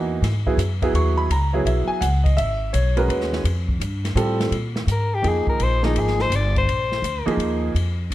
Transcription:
Already playing: E2 E3 A#3 D#4 F#4 G#5
0.22 G#2, snare, ride
0.46 F#3 B3 E4 G#4, kick
0.57 F#2, hi-hat pedal, ride
0.82 F#3 B3 E4 G#4, kick, ride
0.94 D#2 C#6, ride
1.18 B5
1.29 C#2 A#5, ride
1.53 F#3 B3 E4 G#4 C#5
1.65 B1 E5, ride
1.88 G#5
2.01 C#2 F#5, hi-hat pedal, ride
2.24 D#5, kick, ride
2.37 G#1 E5, ride
2.73 B1 C#5, hi-hat pedal, ride
2.97 G#3 C#4 F#4 A#4 B4, ride
3.08 D#2 B4, ride
3.21 snare
3.33 snare
3.44 F2, ride
3.69 kick
3.80 G2, hi-hat pedal, ride
4.05 snare, ride
4.15 A2 G3 C4 F4 A4, hi-hat pedal, ride
4.40 snare, ride
4.51 A#2, ride
4.76 snare
4.87 G#2, hi-hat pedal, ride
4.92 A#4
5.14 G4
5.22 F2 F3 A#3 D#4 G#4, ride
5.29 G#4
5.47 A#4, muted upright bass stroke, kick
5.60 A#1 C5, ride
5.83 F3 A#3 D#4 G#4, snare
5.95 G#1, ride
5.99 G#4
6.07 snare
6.19 C5, snare
6.30 G1, hi-hat pedal, ride
6.35 D5
6.55 C5, kick, ride
6.66 A#1, ride
6.92 snare
7.02 D2, hi-hat pedal, ride
7.26 F3 A#3 D#4 G#4, muted upright bass stroke, ride
7.37 D#2, ride
7.75 F2, ride
8.10 G2

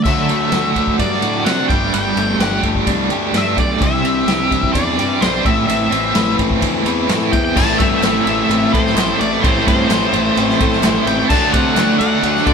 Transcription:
0.04 D2 D3 F#3 A3 D4 F#4 E5, kick, crash
0.29 A3 D4 F#4, ride
0.52 D2 F#3 A3 D4 F#4, snare, ride
0.76 D3 F#3 A3 D4 F#4, kick, ride
0.87 kick
0.99 G2 D3 F#3 A3 D4 F#4 D5, kick, ride
1.22 A2 A3 D4 F#4, ride
1.44 C3 D3 F#3 A3 D4 F#5, snare, ride
1.48 F#4
1.68 G1 G3 D4 G4 G5, kick, ride
1.73 A3
1.93 G1 G3 A3 D4 G4 G5, ride
2.17 G1 A3 D4 G4, ride
2.38 G1 G3 A3 D4 F#5, snare, ride
2.42 G4
2.63 G1 A3 D4 G4, kick, ride
2.75 kick
2.86 C2 G3 A3 D4 G4, kick, ride
3.08 D2 A3 D4 G4, ride
3.13 G3
3.32 G2 G3 A3 D4, snare, ride
3.37 E5
3.55 B1 A3 D4 G4, kick, ride
3.59 D5
3.79 C2 C3 E3 G3 C4 D4 E4, kick, ride
3.83 E5
4.02 G3 C4 D4 E4, ride
4.27 C2 E3 G3 D4 E4 G4, snare, ride
4.49 C3 E3 G3 C4 D4 E4, kick, ride
4.63 kick
4.73 E2 C3 E3 G3 D4 E4 D5, kick, ride
4.98 G2 G3 D4 G4, ride
5.20 B1 C3 E3 G3 C4 D4 E4 C5, snare, ride
5.44 A1 A2 E3 A3 B3 C4 E4 E5, kick, ride
5.67 A1 A2 E3 B3 C4 E4 E5, ride
5.91 A1 B3 C4 E4, ride
6.15 A1 A2 E3 A3 B3 C4 E4 B4, snare, ride
6.39 A1 B3 C4 E4, kick, ride
6.51 kick
6.61 D2 A2 E3 B3 C4 E4, kick, ride
6.84 E2 A3 B3 C4 E4 B4, ride
6.88 A2 E3
7.08 A2 E3 B3 C4 E4, snare, ride
7.31 E2 B3 C4 E4 G5, kick, ride
7.45 G5
7.55 A1 A2 E3 A3 C4 E4 A5, kick, crash
7.78 G2 A2 E3 A3 C4 E4 E5, kick, ride
8.02 A1 A2 E3 A3 C4 E4, snare, clap, ride
8.25 A1 A2 E3 A3 C4 E4 E5, ride
8.49 A1 A2 E3 A3 C4 E4, ride
8.72 A2 E3 A3 C4 E4 C5, kick, ride
8.76 E4
8.86 snare
8.95 A1 A2 E3 A3 C4 E4, snare, clap, ride
9.19 A1 A2 E3 A3 C4 E4 D5, ride
9.24 E4
9.42 A1 A2 E3 A3 C4 E4 C5, kick, ride
9.66 G2 A2 E3 A3 C4 E4 C5, kick, ride
9.90 A1 A2 E3 A3 C4 E4, snare, clap, ride
10.13 A1 A2 E3 A3 C4 E4, ride
10.35 A1 A2 E3 A3 C4 E4, ride
10.49 snare
10.60 A2 E3 A3 C4 E4, kick, ride
10.72 snare
10.82 A1 A2 E3 A3 C4 E4, snare, clap, ride
11.05 A1 A2 E3 A3 C4 E4 G5, ride
11.10 E4
11.19 G5
11.29 D2 D3 A3 D4 F#4 A5, kick, crash
11.52 C3 D3 A3 D4 F#4 F#5, kick, ride
11.76 D2 D3 A3 D4 F#4, snare, clap, ride
11.99 D2 D3 A3 D4 F#4 F#5, ride
12.22 D2 D3 A3 D4 F#4, ride
12.36 snare
12.45 D3 A3 D4 F#4 D5, kick, ride

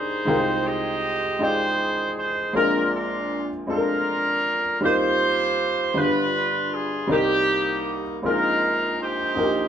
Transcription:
Already playing: C2 C3 D#3 A#3 D4 D#4 G4 G#4 B4 C5 D5
0.25 C2 C3 G#3 D#4 F4 A#4 G5
0.35 C5
0.66 G4 G#4 D#5
1.39 G#3 D#4 F4 G#4 D5 G5
1.44 C5
2.19 C5
2.53 A#1 A#2 G#3 C4 D4 F4 A#4
2.94 A#4
3.67 G#3 C4 D4 F4 A4
3.71 A#4
3.77 A#4
4.81 D#2 D#3 G3 C4 D#4 F4 G4 C5
4.85 A#4
5.94 G1 G2 G3 B3 D4 F4 G#4
5.98 B4
6.04 B4
6.74 G#4
7.07 C2 C3 G3 C4 D#4 A#4 D5
7.11 A#3 G4
8.22 A#1 A#2 G#3 C4 D4 D#4 F4 A#4
8.26 A#4
8.31 D#4
9.01 D#4 G4 C5
9.35 A#1 A#2 D#4 F#4 A#4
9.43 G4

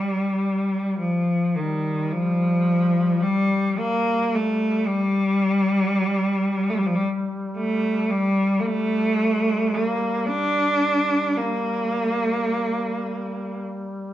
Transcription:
Already playing: G3
1.00 F3
1.53 D#3 G3
2.12 F3
3.23 G3
3.78 A#3
4.35 A3
4.87 G3
6.70 A3
6.78 G3
6.86 F3
6.95 G3
7.57 A3
8.10 G3
8.60 A#3
8.67 A3
9.73 A#3
10.26 D4
11.37 A#3

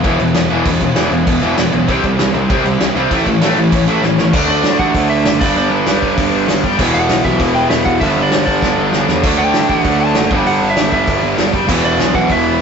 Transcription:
0.03 E1 E2 B2 E3 G3 B3 E4, kick, crash
0.19 E1 E2 B2, crash
0.33 E1 E2 B2 E3 G3 B3 E4, snare, crash
0.48 E1 E2 B2 E3 G3 B3 E4, crash
0.64 E1 E2 B2 E3 G3 B3 E4, kick, crash
0.81 E1 E2 B2, kick, crash
0.94 E1 E2 B2 E3 G3 B3 E4, snare, crash
1.10 E1 E2 B2 E3 G3 B3 E4, crash
1.25 E1 E2 B2 E3 G3 B3 E4, kick, crash
1.41 E1 E2 B2 E3, crash
1.56 E1 E2 B2 E3 G3 B3 E4, snare, crash
1.72 B1 E2 B2 E3 G3 B3 E4, crash
1.87 C2 C3 E3 G3 C4 E4, kick, crash
2.03 C2 C3 G3, kick, crash
2.17 C2 C3 E3 G3 C4 E4, snare, crash
2.33 C2 C3 E3 G3 C4 E4, crash
2.48 C2 C3 E3 G3 C4 E4, kick, crash
2.64 C2 C3 G3, crash
2.78 C2 C3 E3 G3 C4 E4, snare, crash
2.94 C2 C3 E3 G3 C4 E4, crash
3.09 A1 A2 E3 A3 C#4 E4, kick, crash
3.26 A1 A2 E3, kick, crash
3.40 A1 A2 E3 A3 C#4 E4, snare, crash
3.56 A1 A2 E3 A3 C#4 E4, crash
3.71 A1 A2 E3 A3 C#4 E4, kick, crash
3.86 A1 A2 E3 A3, crash
4.01 A1 A2 E3 A3 C#4 E4, snare
4.17 A1 A2 E3 A3 C#4 E4, snare
4.32 D2 D3 F#3 A3 D4, kick, crash
4.48 D2 D5
4.63 A2, snare, open hi-hat
4.79 A1 D3 A3 D4 F#5, kick
4.93 D2 D3 F#3 A3 D4, kick, open hi-hat
5.10 E5
5.24 F#1, snare, open hi-hat
5.39 G1 G2 D3 G3 B3 D4 D5, kick, crash
5.55 G1 D5
5.70 G1 B4
5.86 G1 G2 D3 G3 B4, snare, open hi-hat
6.00 G2 D3 G3 B3 D4, kick
6.18 G1, kick, open hi-hat
6.32 G1
6.48 G1, snare, open hi-hat
6.63 G1, kick
6.77 E1 E2 B2 E3 G3 B3 E4, kick, crash
6.81 E3
6.93 E1 F#5
7.09 B1, snare, open hi-hat
7.23 B1 E2 B2 E3 E5, kick
7.38 E1 E3 G3 B3 E4, kick, open hi-hat
7.55 G5
7.70 E1 E5, snare, open hi-hat
7.85 E1 F#5, kick
7.99 G1 G2 D3 G3 B3 D4 E5, kick, open hi-hat
8.16 G1
8.22 D5
8.32 G1, snare, open hi-hat
8.45 G2 D3 G3 D5, kick
8.62 G1 G2 D3 G3 B3 D4, kick, snare
8.77 G1
8.92 G1, snare
9.08 E2, snare
9.23 D2 D3 F#3 A3 D4, kick, splash, crash
9.38 D2 G5
9.54 A2, snare, open hi-hat
9.68 A1 D3 A3 D4 F#5, kick
9.83 D2 D3 F#3 A3 D4, kick, open hi-hat
10.01 A5
10.15 F#1 F#5, snare, open hi-hat
10.29 G1 G2 D3 G3 B3 D4 G5, kick
10.46 G1 F#5, open hi-hat
10.62 G1
10.70 E5
10.76 G1 G2 D3 G3, snare, open hi-hat
10.90 G2 D3 G3 B3 D4 E5, kick
11.08 G1, kick, open hi-hat
11.23 G1
11.38 G1, snare, open hi-hat
11.53 F#1, kick
11.67 E1 E2 B2 E3 G3 B3 E4, kick, crash
11.71 E3
11.84 E1 D5
11.98 B1, snare, open hi-hat
12.14 B1 E2 B2 E3 F#5, kick
12.27 E1 E3 G3 B3 E4 E5, kick, open hi-hat

